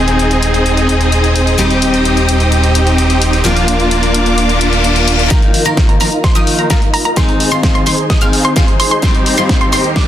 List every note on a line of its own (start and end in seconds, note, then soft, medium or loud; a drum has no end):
0.00 1.57 D#1 medium
0.00 1.55 D#3 medium
0.00 1.56 G#3 medium
0.00 1.56 C4 medium
0.00 1.56 D#4 medium
0.00 1.56 G#4 medium
0.00 1.57 G#4 medium
0.00 3.41 C5 medium
0.00 3.41 D#5 medium
0.00 1.57 G#5 medium
0.00 3.41 D#6 medium
0.08 closed hi-hat soft
0.19 closed hi-hat medium
0.31 closed hi-hat soft
0.43 closed hi-hat medium
0.54 closed hi-hat soft
0.66 closed hi-hat medium
0.77 closed hi-hat soft
0.89 closed hi-hat medium
1.01 closed hi-hat soft
1.12 closed hi-hat medium
1.24 closed hi-hat soft
1.36 closed hi-hat medium
1.47 closed hi-hat soft
1.58 3.43 D#1 medium
1.58 3.42 G3 medium
1.58 3.42 C4 medium
1.58 3.42 D#4 medium
1.58 3.42 G4 medium
1.58 3.43 G4 medium
1.58 3.43 G5 medium
1.58 closed hi-hat medium
1.70 closed hi-hat soft
1.82 closed hi-hat medium
1.94 closed hi-hat soft
2.05 closed hi-hat medium
2.17 closed hi-hat soft
2.29 closed hi-hat medium
2.40 closed hi-hat soft
2.52 closed hi-hat medium
2.64 closed hi-hat soft
2.75 closed hi-hat medium
2.87 closed hi-hat soft
2.98 closed hi-hat medium
3.10 closed hi-hat soft
3.22 closed hi-hat medium
3.33 closed hi-hat soft
3.44 5.29 D#1 medium
3.44 5.28 F3 medium
3.44 5.28 A#3 medium
3.44 5.28 D4 medium
3.44 5.28 F4 medium
3.44 5.29 F4 medium
3.44 5.29 A#4 medium
3.44 5.29 D5 medium
3.44 5.29 F5 medium
3.44 5.29 D6 medium
3.44 closed hi-hat medium
3.56 closed hi-hat soft
3.68 closed hi-hat medium
3.80 closed hi-hat soft
3.91 closed hi-hat medium
4.03 closed hi-hat soft
4.14 closed hi-hat medium
4.26 closed hi-hat soft
4.38 closed hi-hat medium
4.38 reverse cymbal medium
4.49 closed hi-hat soft
4.61 closed hi-hat medium
4.73 closed hi-hat soft
4.84 closed hi-hat medium
4.96 closed hi-hat soft
5.08 closed hi-hat medium
5.19 closed hi-hat soft
5.30 5.63 D#3 medium
5.30 5.63 F3 medium
5.30 5.63 A#3 medium
5.30 7.15 A#3 medium
5.30 5.63 D#4 medium
5.30 5.63 F4 medium
5.30 7.15 F4 medium
5.30 5.63 A#4 medium
5.30 10.08 D#5 medium
5.30 7.15 F5 medium
5.30 5.63 A#5 loud
5.30 kick loud
5.30 snare soft
5.30 closed hi-hat medium
5.30 riser medium
5.42 closed hi-hat soft
5.54 open hi-hat loud
5.65 5.98 D#3 medium
5.65 5.98 F3 medium
5.65 5.98 A#3 medium
5.65 5.86 D#4 loud
5.65 5.86 F4 medium
5.65 5.98 F4 medium
5.65 5.86 A#4 loud
5.65 5.86 A#5 loud
5.65 closed hi-hat soft
5.77 kick loud
5.77 snare soft
5.77 closed hi-hat medium
5.89 5.98 D#4 medium
5.89 5.98 F4 medium
5.89 5.98 A#4 medium
5.89 5.98 A#5 medium
5.89 closed hi-hat soft
6.00 6.07 D#3 medium
6.00 6.08 F3 medium
6.00 6.08 A#3 medium
6.00 6.19 D#4 medium
6.00 6.08 D#4 medium
6.00 6.19 F4 medium
6.00 6.19 A#4 loud
6.00 6.19 A#5 loud
6.00 open hi-hat loud
6.12 closed hi-hat soft
6.24 6.33 D#4 medium
6.24 6.33 F4 medium
6.24 6.33 C5 loud
6.24 6.33 C6 loud
6.24 kick loud
6.24 snare soft
6.24 closed hi-hat medium
6.35 6.67 D#3 medium
6.35 6.68 F3 medium
6.35 6.68 A#3 medium
6.35 6.56 D#4 medium
6.35 6.68 D#4 medium
6.35 6.56 F4 medium
6.35 6.56 D#5 loud
6.35 6.56 D#6 loud
6.35 closed hi-hat soft
6.47 open hi-hat loud
6.59 6.68 D#4 medium
6.59 6.68 F4 medium
6.59 6.68 A#4 medium
6.59 6.68 A#5 medium
6.59 closed hi-hat soft
6.70 6.77 D#3 medium
6.70 6.77 F3 medium
6.70 6.78 A#3 medium
6.70 6.91 D#4 loud
6.70 6.91 F4 medium
6.70 6.78 F4 loud
6.70 6.91 A#4 loud
6.70 6.91 A#5 loud
6.70 kick loud
6.70 snare medium
6.70 closed hi-hat medium
6.82 closed hi-hat soft
6.94 7.04 D#4 medium
6.94 7.04 F4 medium
6.94 7.04 A#4 loud
6.94 7.04 A#5 loud
6.94 open hi-hat loud
7.05 7.14 D#4 medium
7.05 7.14 F4 medium
7.05 7.14 A#4 loud
7.05 7.14 A#5 loud
7.05 closed hi-hat soft
7.16 7.49 D#3 medium
7.16 9.01 D#3 medium
7.16 7.49 G#3 medium
7.16 9.01 G#3 medium
7.16 7.49 C4 medium
7.16 7.49 D#4 medium
7.16 10.08 D#4 medium
7.16 7.49 D#4 medium
7.16 7.49 G#4 medium
7.16 7.49 C5 loud
7.16 10.08 C5 medium
7.16 7.49 C6 loud
7.16 kick loud
7.16 snare soft
7.16 closed hi-hat medium
7.29 closed hi-hat soft
7.40 open hi-hat loud
7.51 7.84 D#3 medium
7.51 7.84 G#3 medium
7.51 7.84 C4 medium
7.51 7.72 D#4 loud
7.51 7.84 F4 medium
7.51 7.72 G#4 medium
7.51 7.72 C5 loud
7.51 7.72 C6 loud
7.51 closed hi-hat soft
7.63 kick loud
7.63 snare medium
7.63 closed hi-hat medium
7.75 7.84 D#4 medium
7.75 7.84 G#4 medium
7.75 7.84 C5 medium
7.75 7.84 C6 medium
7.75 closed hi-hat soft
7.86 7.93 D#3 medium
7.86 7.94 G#3 medium
7.86 7.94 C4 medium
7.86 8.05 D#4 medium
7.86 7.94 D#4 medium
7.86 8.05 G#4 medium
7.86 8.05 C5 loud
7.86 8.05 C6 loud
7.86 open hi-hat loud
7.98 closed hi-hat soft
8.10 8.19 D#4 medium
8.10 8.19 G#4 medium
8.10 8.19 D#5 loud
8.10 8.19 D#6 loud
8.10 kick loud
8.10 snare medium
8.10 closed hi-hat medium
8.21 8.53 D#3 medium
8.21 8.54 G#3 medium
8.21 8.54 C4 medium
8.21 8.42 D#4 medium
8.21 8.54 D#4 medium
8.21 8.42 G#4 medium
8.21 8.42 F5 loud
8.21 8.42 F6 loud
8.21 closed hi-hat soft
8.33 open hi-hat loud
8.45 8.54 D#4 medium
8.45 8.54 G#4 medium
8.45 8.54 C5 medium
8.45 8.54 C6 medium
8.45 closed hi-hat soft
8.56 8.63 D#3 medium
8.56 8.63 G#3 medium
8.56 8.64 C4 medium
8.56 8.77 D#4 loud
8.56 8.64 F4 loud
8.56 8.77 G#4 medium
8.56 8.77 C5 loud
8.56 8.77 C6 loud
8.56 kick loud
8.56 snare medium
8.56 closed hi-hat medium
8.68 closed hi-hat soft
8.80 8.90 D#4 medium
8.80 8.90 G#4 medium
8.80 8.90 C5 loud
8.80 8.90 C6 loud
8.80 open hi-hat loud
8.91 9.00 D#4 medium
8.91 9.00 G#4 medium
8.91 9.00 C5 loud
8.91 9.00 C6 medium
8.91 closed hi-hat soft
9.02 10.08 D#2 medium
9.02 9.35 D#3 medium
9.02 10.08 G3 medium
9.02 9.35 G3 medium
9.02 9.35 C4 medium
9.02 9.35 D#4 medium
9.02 9.35 D#4 loud
9.02 9.35 G4 medium
9.02 9.35 C5 loud
9.02 9.35 C6 loud
9.02 kick loud
9.02 snare medium
9.02 closed hi-hat medium
9.15 closed hi-hat soft
9.26 open hi-hat loud
9.37 9.70 D#3 medium
9.37 9.70 G3 medium
9.37 9.70 C4 medium
9.37 9.58 D#4 loud
9.37 9.70 F4 medium
9.37 9.58 G4 medium
9.37 9.58 C5 loud
9.37 9.58 C6 loud
9.37 closed hi-hat soft
9.49 kick loud
9.49 snare medium
9.49 closed hi-hat medium
9.61 9.70 D#4 medium
9.61 9.70 G4 medium
9.61 9.70 C5 medium
9.61 9.70 C6 medium
9.61 closed hi-hat soft
9.72 9.79 D#3 medium
9.72 9.80 G3 medium
9.72 9.80 C4 medium
9.72 9.91 D#4 medium
9.72 9.80 D#4 medium
9.72 9.91 G4 medium
9.72 9.91 C5 loud
9.72 9.91 C6 loud
9.72 open hi-hat loud
9.84 closed hi-hat soft
9.96 10.05 D#4 loud
9.96 10.05 G4 medium
9.96 10.05 D5 loud
9.96 10.05 D6 loud
9.96 kick loud
9.96 snare medium
9.96 closed hi-hat medium